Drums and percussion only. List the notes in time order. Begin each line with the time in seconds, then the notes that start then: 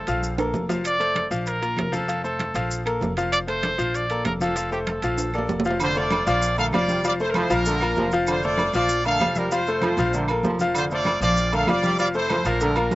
0.07 high timbale, maracas
0.23 high conga, maracas
0.38 high conga, high timbale, claves, maracas
0.54 high conga, low timbale, maracas
0.69 high conga, low timbale, maracas
0.84 high conga, high timbale, claves, maracas
1.00 high conga, high timbale, maracas
1.15 high conga, high timbale, low timbale, claves, maracas
1.31 high conga, maracas
1.46 high conga, high timbale, maracas
1.62 high conga, high timbale, maracas
1.77 high conga, high timbale, low timbale, claves, maracas
1.93 high conga, maracas
2.08 high conga, high timbale, maracas
2.24 high conga, maracas
2.39 high conga, high timbale, low timbale, claves, maracas
2.55 high timbale, maracas
2.71 high conga, maracas
2.86 high conga, high timbale, claves, maracas
3.01 high conga, low timbale, maracas
3.17 high timbale, maracas
3.33 high conga, high timbale, claves, maracas
3.48 high conga, high timbale, maracas
3.63 high conga, high timbale, low timbale, claves, maracas
3.79 high conga, maracas
3.94 high conga, high timbale, maracas
4.10 high conga, high timbale, maracas
4.25 high conga, high timbale, low timbale, claves, maracas
4.40 high conga, maracas
4.56 high conga, high timbale, maracas
4.72 high conga, maracas
4.87 high conga, high timbale, low timbale, claves, maracas
5.02 high timbale, maracas
5.18 high conga, high timbale, maracas
5.33 high conga, claves, maracas
5.38 low timbale
5.49 high conga, low timbale, maracas
5.60 low timbale
5.65 maracas
5.71 low timbale
5.80 high conga, low agogo, claves, maracas
5.95 high conga, maracas
6.11 high conga, low timbale, low agogo, claves, maracas
6.26 high conga, low agogo, maracas
6.42 high conga, maracas
6.57 high conga, low agogo, maracas
6.73 high conga, low timbale, low agogo, claves, maracas
6.88 high conga, maracas
7.03 high conga, low agogo, maracas
7.19 high conga, maracas
7.34 high conga, low timbale, low agogo, claves, maracas
7.50 low agogo, maracas
7.65 high conga, maracas
7.81 high conga, low agogo, claves, maracas
7.96 high conga, low timbale, maracas
8.12 maracas
8.27 high conga, low agogo, claves, maracas
8.42 high conga, maracas
8.58 high conga, low timbale, low agogo, claves, maracas
8.74 high conga, low agogo, maracas
8.89 high conga, maracas
9.04 high conga, low agogo, maracas
9.20 high conga, low timbale, low agogo, claves, maracas
9.35 high conga, maracas
9.51 low agogo, maracas
9.66 high conga, maracas
9.82 high conga, low timbale, low agogo, claves, maracas
9.98 low agogo, maracas
10.13 high conga, maracas
10.28 high conga, low agogo, claves, maracas
10.43 high conga, low timbale, maracas
10.59 high conga, maracas
10.74 high conga, low agogo, claves, maracas
10.90 high conga, maracas
11.05 high conga, low timbale, low agogo, claves, maracas
11.21 high conga, low agogo, maracas
11.37 high conga, maracas
11.52 high conga, low agogo, maracas
11.67 high conga, low timbale, low agogo, claves, maracas
11.83 high conga, maracas
11.99 low agogo, maracas
12.14 high conga, maracas
12.29 high conga, low timbale, low agogo, claves, maracas
12.45 low agogo, maracas
12.61 high conga, maracas
12.76 high conga, low agogo, claves, maracas
12.91 high conga, low timbale, maracas